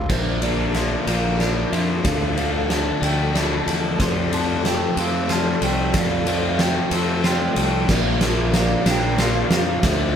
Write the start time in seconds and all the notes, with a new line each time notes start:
Already playing: F5
0.09 A#1 A#2 F3 A#3 D4 A#4 C5 D5 E5, kick, snare, crash
0.42 A#2 D3 F3 A#3 D4 D5, ride
0.74 A#2 F3 A#3 D4 D5 E5, snare, ride
1.06 A#1 A#2 F3 A#3 D4 F5, ride
1.38 A#2 F3 A#3 D4 D5 E5, snare, ride
1.72 F2 F3 E5, ride
2.03 D2 D3 F3 A3 D4 A4 D5 F5 E6, kick, snare, ride
2.14 F5
2.20 F5
2.28 F5
2.36 D3 F3 A3 D4 F5, ride
2.43 F5
2.51 F5
2.58 F5
2.65 D3 F5
2.69 F3 A3 D4 D5 A5, snare, ride
3.01 D2 D3 F3 A3 D4 G5, ride
3.34 D3 F3 A3 D4 E4 E5 A5, snare, ride
3.44 A5
3.51 A5
3.60 A5
3.67 E2 A5, ride
3.74 A5
3.80 A5
3.96 F2 C3 F3 A3 C4 A5
4.00 F3 F4 A4 D5 C6, kick, snare, ride
4.31 F2 C3 F3 A3 C4 A5, ride
4.63 F2 C3 F3 A3 C4 C5 G5, snare, ride
4.96 F2 C3 F3 A3 C4, ride
5.00 F5
5.28 F2 C3 F3 A3 C4 F4 D5 A5, snare, ride
5.62 C2 A3 G5, ride
5.94 F2 C3 F3 A3 C4 D5 F5, kick, snare, ride
6.04 F5
6.11 F5
6.19 F5
6.26 F2 C3 F3 A3 C4 F5, ride
6.34 F5
6.40 F5
6.49 F5
6.55 F2 F5
6.59 C3 F3 A3 C4 C5 G5, snare, ride
6.90 F2 C3 F3 A3 C4 A5, ride
7.23 F2 C3 F3 A3 C4 F4 D5 G5, snare, ride
7.34 G5
7.41 G5
7.48 G5
7.56 C2 A3 G5, ride
7.63 G5
7.72 G5
7.78 G5
7.88 A#1 A#2 F3 A#3 D4 A#4 D5 E5, kick, snare, crash
8.21 A#2 F3 A#3 D4 E5, snare, ride
8.53 A#2 F3 A#3 D4 D5 F5, snare, ride
8.86 A#1 A#2 F3 A#3 D4 G5, snare, ride
9.18 A#2 F3 A#3 D4 F4 F5 E6, snare, ride
9.28 F5
9.35 F5
9.43 F5
9.50 F2 A#3 F5, snare, ride
9.57 F5
9.65 F5
9.72 F5
9.79 D2 D3 F5, snare, ride
9.83 D3 F3 A3 D4 F4 C5 D5 E5, kick